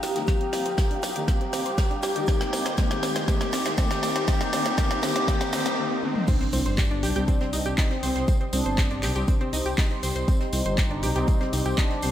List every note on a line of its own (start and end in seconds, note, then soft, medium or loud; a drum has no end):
0.00 0.12 C2 medium
0.00 0.26 G4 loud
0.00 5.74 G4 medium
0.00 0.11 G4 medium
0.00 5.74 F5 medium
0.00 5.74 A#5 medium
0.00 5.74 D#6 medium
0.00 snare medium
0.00 open hi-hat medium
0.00 tambourine medium
0.00 riser medium
0.00 shaker medium
0.16 0.24 C2 medium
0.16 0.26 D#3 medium
0.16 0.26 A#3 medium
0.16 0.26 D#4 medium
0.16 0.20 G4 medium
0.16 snare soft
0.16 closed hi-hat medium
0.16 tambourine soft
0.27 0.40 C4 medium
0.27 1.26 G4 loud
0.27 kick loud
0.27 snare medium
0.27 closed hi-hat medium
0.27 tambourine soft
0.27 shaker medium
0.41 0.46 C4 medium
0.41 closed hi-hat soft
0.53 0.62 C2 medium
0.53 0.61 C4 medium
0.53 snare medium
0.53 open hi-hat loud
0.53 tambourine medium
0.53 shaker medium
0.66 1.04 G1 medium
0.66 0.71 C5 medium
0.66 closed hi-hat medium
0.66 tambourine soft
0.78 0.83 G4 medium
0.78 kick loud
0.78 snare loud
0.78 snare medium
0.78 closed hi-hat medium
0.78 tambourine soft
0.78 shaker medium
0.91 0.99 D4 medium
0.91 closed hi-hat soft
1.02 1.12 C2 medium
1.02 1.11 G4 loud
1.02 snare medium
1.02 open hi-hat medium
1.02 tambourine medium
1.02 shaker medium
1.16 1.24 C2 medium
1.16 1.26 D#3 medium
1.16 1.26 A#3 medium
1.16 1.26 D#4 loud
1.16 1.21 G4 loud
1.16 closed hi-hat medium
1.16 tambourine soft
1.28 1.39 C4 medium
1.28 2.26 G4 loud
1.28 kick loud
1.28 snare medium
1.28 closed hi-hat medium
1.28 tambourine soft
1.28 shaker medium
1.41 1.46 C4 medium
1.41 closed hi-hat soft
1.53 1.62 C2 medium
1.53 1.61 C4 medium
1.53 snare medium
1.53 open hi-hat medium
1.53 tambourine medium
1.53 shaker medium
1.66 1.74 C2 medium
1.66 1.71 C5 medium
1.66 closed hi-hat soft
1.66 closed hi-hat medium
1.66 tambourine soft
1.78 1.83 G4 medium
1.78 kick loud
1.78 snare loud
1.78 snare medium
1.78 closed hi-hat medium
1.78 tambourine soft
1.78 shaker medium
1.91 1.99 D4 medium
1.91 closed hi-hat soft
2.02 2.12 C2 loud
2.02 2.11 G4 loud
2.02 snare medium
2.02 open hi-hat medium
2.02 tambourine medium
2.02 shaker medium
2.16 2.24 C2 medium
2.16 2.26 D#3 medium
2.16 2.26 A#3 medium
2.16 2.26 D#4 loud
2.16 2.21 G4 loud
2.16 closed hi-hat medium
2.16 tambourine soft
2.27 2.76 D#3 medium
2.27 2.76 A#3 medium
2.27 2.40 C4 medium
2.27 2.76 D#4 loud
2.27 2.76 G4 loud
2.27 kick loud
2.27 snare medium
2.27 closed hi-hat medium
2.27 tambourine medium
2.27 shaker medium
2.41 2.46 C4 medium
2.41 snare medium
2.41 snare soft
2.41 closed hi-hat soft
2.53 2.62 C2 medium
2.53 2.61 C4 medium
2.53 snare medium
2.53 open hi-hat medium
2.53 tambourine medium
2.53 shaker medium
2.66 3.05 G1 medium
2.66 2.71 C5 medium
2.66 snare medium
2.66 closed hi-hat medium
2.66 tambourine soft
2.78 3.26 D#3 medium
2.78 3.26 A#3 medium
2.78 2.90 C4 medium
2.78 3.26 D#4 loud
2.78 3.26 G4 loud
2.78 kick loud
2.78 snare loud
2.78 snare medium
2.78 closed hi-hat medium
2.78 tambourine soft
2.78 shaker medium
2.91 2.96 C4 medium
2.91 snare medium
2.91 closed hi-hat soft
3.03 3.12 C2 medium
3.03 3.11 C4 medium
3.03 snare loud
3.03 open hi-hat medium
3.03 tambourine medium
3.03 shaker medium
3.15 3.24 C2 medium
3.15 3.21 C5 medium
3.15 snare medium
3.15 closed hi-hat soft
3.15 closed hi-hat medium
3.15 tambourine soft
3.28 3.76 D#3 medium
3.28 3.76 A#3 medium
3.28 3.40 C4 medium
3.28 3.76 D#4 loud
3.28 3.76 G4 loud
3.28 kick loud
3.28 snare loud
3.28 closed hi-hat medium
3.28 tambourine soft
3.28 shaker medium
3.41 3.46 C4 medium
3.41 snare medium
3.41 snare soft
3.41 closed hi-hat soft
3.52 3.62 C2 medium
3.52 3.61 C4 medium
3.52 snare medium
3.52 snare loud
3.52 open hi-hat loud
3.52 tambourine medium
3.52 shaker medium
3.65 3.74 C2 medium
3.65 3.70 C5 medium
3.65 snare loud
3.65 snare medium
3.65 closed hi-hat medium
3.65 tambourine soft
3.65 shaker medium
3.77 4.26 D#3 loud
3.77 4.26 A#3 medium
3.77 3.90 C4 medium
3.77 4.26 D#4 loud
3.77 4.26 G4 loud
3.77 kick loud
3.77 snare loud
3.77 closed hi-hat medium
3.77 tambourine medium
3.77 shaker medium
3.90 3.96 C4 medium
3.90 snare loud
3.90 snare medium
3.90 closed hi-hat soft
3.90 shaker medium
4.03 4.12 C2 medium
4.03 4.11 C4 medium
4.03 snare loud
4.03 open hi-hat medium
4.03 tambourine medium
4.03 shaker medium
4.16 4.24 C2 medium
4.16 4.21 C5 medium
4.16 snare medium
4.16 closed hi-hat medium
4.28 4.51 D#3 loud
4.28 4.51 A#3 medium
4.28 4.40 C4 medium
4.28 4.51 D#4 loud
4.28 4.51 G4 loud
4.28 kick loud
4.28 snare loud
4.28 closed hi-hat medium
4.28 tambourine medium
4.28 shaker medium
4.41 4.46 C4 medium
4.41 snare medium
4.41 closed hi-hat soft
4.41 tambourine soft
4.53 4.62 C2 medium
4.53 4.76 D#3 loud
4.53 4.76 A#3 medium
4.53 4.65 C4 medium
4.53 4.76 D#4 loud
4.53 4.76 G4 loud
4.53 snare loud
4.53 open hi-hat loud
4.53 tambourine medium
4.53 shaker medium
4.65 5.04 G1 medium
4.65 4.71 C4 medium
4.65 snare medium
4.65 closed hi-hat medium
4.65 tambourine soft
4.78 5.01 D#3 loud
4.78 5.01 A#3 medium
4.78 4.90 C4 medium
4.78 5.01 D#4 loud
4.78 5.01 G4 loud
4.78 kick loud
4.78 snare loud
4.78 closed hi-hat medium
4.78 tambourine medium
4.78 shaker medium
4.90 4.96 C4 medium
4.90 snare loud
4.90 closed hi-hat soft
5.02 5.12 C2 medium
5.02 5.26 D#3 loud
5.02 5.26 A#3 medium
5.02 5.15 C4 medium
5.02 5.26 D#4 loud
5.02 5.26 G4 loud
5.02 snare loud
5.02 open hi-hat loud
5.02 tambourine medium
5.02 shaker medium
5.16 5.24 C2 medium
5.16 5.21 C4 medium
5.16 snare medium
5.16 closed hi-hat medium
5.28 5.51 D#3 loud
5.28 5.51 A#3 medium
5.28 5.40 C4 medium
5.28 5.51 D#4 loud
5.28 5.51 G4 loud
5.28 kick loud
5.28 snare loud
5.28 closed hi-hat medium
5.28 tambourine medium
5.28 shaker medium
5.41 5.46 C4 medium
5.41 snare medium
5.41 closed hi-hat soft
5.41 tambourine soft
5.53 5.62 G1 medium
5.53 5.76 D#3 loud
5.53 5.76 A#3 medium
5.53 5.65 C4 medium
5.53 5.76 D#4 loud
5.53 5.76 G4 loud
5.53 snare loud
5.53 open hi-hat medium
5.53 tambourine medium
5.53 shaker medium
5.65 5.74 C2 medium
5.65 5.71 C4 medium
5.65 snare soft
5.65 snare medium
5.65 closed hi-hat medium
5.65 tambourine soft
5.78 6.01 D#3 loud
5.78 6.01 A#3 medium
5.78 6.01 D#4 loud
6.03 6.26 D#3 loud
6.03 6.26 A#3 medium
6.03 6.26 D#4 loud
6.03 high tom medium
6.16 mid tom medium
6.28 6.40 C4 medium
6.28 7.79 D4 loud
6.28 12.11 G4 medium
6.28 12.11 C5 medium
6.28 6.40 C5 medium
6.28 12.11 C6 medium
6.28 10.24 D#6 medium
6.28 kick loud
6.28 closed hi-hat soft
6.28 tambourine medium
6.28 crash loud
6.28 impact medium
6.28 shaker medium
6.41 6.46 C4 medium
6.41 6.46 C5 medium
6.41 snare soft
6.41 closed hi-hat soft
6.52 6.62 C2 loud
6.52 6.61 C4 medium
6.52 6.61 C5 medium
6.52 open hi-hat loud
6.52 tambourine medium
6.52 shaker medium
6.66 7.04 G1 medium
6.66 6.71 C5 medium
6.66 6.71 C6 medium
6.66 closed hi-hat soft
6.66 tambourine soft
6.78 6.83 G4 medium
6.78 6.83 G5 medium
6.78 kick loud
6.78 snare loud
6.78 clap loud
6.78 closed hi-hat soft
6.78 tambourine medium
6.78 shaker loud
6.91 6.99 D4 medium
6.91 6.99 D5 medium
6.91 closed hi-hat soft
7.03 7.12 C2 medium
7.03 7.11 G4 loud
7.03 7.11 G5 medium
7.03 open hi-hat loud
7.03 tambourine medium
7.03 shaker medium
7.16 7.24 C2 medium
7.16 8.00 C3 medium
7.16 8.00 G3 medium
7.16 8.00 C4 loud
7.16 7.21 G4 loud
7.16 7.21 G5 medium
7.16 closed hi-hat soft
7.16 tambourine soft
7.28 7.40 C4 medium
7.28 7.40 C5 medium
7.28 kick loud
7.28 closed hi-hat soft
7.28 tambourine soft
7.28 shaker medium
7.41 7.49 C4 loud
7.41 7.49 C5 medium
7.41 snare soft
7.41 closed hi-hat soft
7.53 7.62 C2 medium
7.53 7.61 D#4 medium
7.53 7.61 D#5 medium
7.53 open hi-hat loud
7.53 tambourine loud
7.53 shaker medium
7.66 7.74 C2 medium
7.66 7.74 G4 loud
7.66 7.74 G5 medium
7.66 closed hi-hat soft
7.66 tambourine soft
7.78 8.43 C4 loud
7.78 7.90 D#4 medium
7.78 7.90 D#5 medium
7.78 kick loud
7.78 snare loud
7.78 clap loud
7.78 closed hi-hat soft
7.78 tambourine soft
7.78 shaker medium
7.91 7.99 C4 medium
7.91 7.99 C5 medium
7.91 snare soft
7.91 closed hi-hat soft
8.03 8.12 C2 medium
8.03 9.13 C3 medium
8.03 9.13 G3 medium
8.03 9.13 C4 loud
8.03 8.11 C5 loud
8.03 8.11 C6 medium
8.03 open hi-hat loud
8.03 tambourine medium
8.03 shaker medium
8.15 8.24 C2 medium
8.15 8.24 C5 medium
8.15 8.24 C6 medium
8.15 snare soft
8.15 closed hi-hat soft
8.15 tambourine soft
8.28 8.40 C4 medium
8.28 8.40 C5 medium
8.28 kick loud
8.28 closed hi-hat soft
8.28 tambourine medium
8.28 shaker medium
8.41 8.46 C4 medium
8.41 8.46 C5 medium
8.41 closed hi-hat soft
8.53 8.62 C2 medium
8.53 8.61 C4 medium
8.53 9.43 D4 loud
8.53 8.61 C5 medium
8.53 open hi-hat loud
8.53 tambourine medium
8.53 shaker medium
8.66 9.05 G1 medium
8.66 8.71 C5 medium
8.66 8.71 C6 medium
8.66 closed hi-hat soft
8.66 tambourine soft
8.78 8.83 G4 medium
8.78 8.83 G5 medium
8.78 kick loud
8.78 snare loud
8.78 clap loud
8.78 closed hi-hat soft
8.78 tambourine soft
8.78 shaker medium
8.90 8.99 D4 medium
8.90 8.99 D5 medium
8.90 closed hi-hat soft
9.03 9.12 C2 medium
9.03 9.11 G4 loud
9.03 9.11 G5 medium
9.03 clap medium
9.03 open hi-hat loud
9.03 tambourine medium
9.03 shaker medium
9.15 9.24 C2 medium
9.15 11.13 C3 medium
9.15 11.13 G3 medium
9.15 11.13 C4 loud
9.15 9.21 G4 loud
9.15 9.21 G5 medium
9.15 closed hi-hat soft
9.15 tambourine soft
9.28 9.40 C4 medium
9.28 9.40 C5 medium
9.28 kick loud
9.28 closed hi-hat soft
9.28 tambourine medium
9.28 shaker medium
9.41 9.49 C4 loud
9.41 9.49 C5 medium
9.41 closed hi-hat soft
9.53 9.62 C2 medium
9.53 9.61 D#4 medium
9.53 9.61 D#5 medium
9.53 open hi-hat loud
9.53 tambourine loud
9.53 shaker medium
9.66 9.74 C2 medium
9.66 9.74 G4 loud
9.66 9.74 G5 medium
9.66 closed hi-hat soft
9.66 tambourine soft
9.78 9.90 D#4 medium
9.78 9.90 D#5 medium
9.78 kick loud
9.78 snare loud
9.78 clap loud
9.78 closed hi-hat soft
9.78 tambourine medium
9.78 shaker medium
9.91 9.99 C4 medium
9.91 9.99 C5 medium
9.91 closed hi-hat soft
10.03 10.12 C2 loud
10.03 10.11 C5 loud
10.03 10.11 C6 medium
10.03 open hi-hat loud
10.03 tambourine loud
10.03 shaker medium
10.16 10.24 C2 medium
10.16 10.24 C5 medium
10.16 10.24 C6 medium
10.16 closed hi-hat soft
10.16 tambourine soft
10.28 10.39 C4 medium
10.28 11.68 D#4 loud
10.28 10.39 C5 medium
10.28 12.11 D6 loud
10.28 kick loud
10.28 closed hi-hat soft
10.28 tambourine medium
10.28 shaker medium
10.40 10.46 C4 medium
10.40 10.46 C5 medium
10.40 snare soft
10.40 closed hi-hat soft
10.52 10.62 C2 medium
10.52 10.61 C4 medium
10.52 10.61 C5 medium
10.52 open hi-hat loud
10.52 tambourine medium
10.52 shaker medium
10.65 11.05 G1 medium
10.65 10.71 C5 medium
10.65 10.71 C6 medium
10.65 closed hi-hat soft
10.65 tambourine soft
10.77 10.83 G4 medium
10.77 10.83 G5 medium
10.77 kick loud
10.77 snare loud
10.77 clap loud
10.77 closed hi-hat soft
10.77 tambourine medium
10.77 shaker medium
10.91 10.99 D4 medium
10.91 10.99 D5 medium
10.91 closed hi-hat soft
11.03 11.12 C2 medium
11.03 11.11 G4 loud
11.03 11.11 G5 medium
11.03 open hi-hat loud
11.03 tambourine medium
11.03 shaker medium
11.15 11.24 C2 medium
11.15 12.00 C3 loud
11.15 12.00 G3 medium
11.15 12.00 C4 loud
11.15 11.21 G4 loud
11.15 11.21 G5 medium
11.15 closed hi-hat soft
11.15 tambourine soft
11.28 11.40 C4 medium
11.28 11.40 C5 medium
11.28 kick loud
11.28 closed hi-hat soft
11.28 tambourine medium
11.28 shaker medium
11.41 11.49 C4 loud
11.41 11.49 C5 medium
11.41 snare soft
11.41 closed hi-hat soft
11.53 11.62 C2 medium
11.53 11.61 D#4 medium
11.53 11.61 D#5 medium
11.53 open hi-hat loud
11.53 tambourine loud
11.53 shaker medium
11.66 11.74 C2 medium
11.66 11.74 G4 loud
11.66 11.74 G5 medium
11.66 closed hi-hat soft
11.66 tambourine soft
11.78 12.11 D4 loud
11.78 11.90 D#4 medium
11.78 11.90 D#5 medium
11.78 kick loud
11.78 snare loud
11.78 clap loud
11.78 closed hi-hat soft
11.78 tambourine medium
11.78 shaker medium
11.91 11.99 C4 medium
11.91 11.99 C5 medium
11.91 snare soft
11.91 closed hi-hat soft
12.02 12.11 C2 loud
12.02 12.11 C3 loud
12.02 12.11 G3 medium
12.02 12.11 C4 loud
12.02 12.11 C5 loud
12.02 12.11 C6 medium
12.02 open hi-hat medium
12.02 tambourine medium
12.02 shaker medium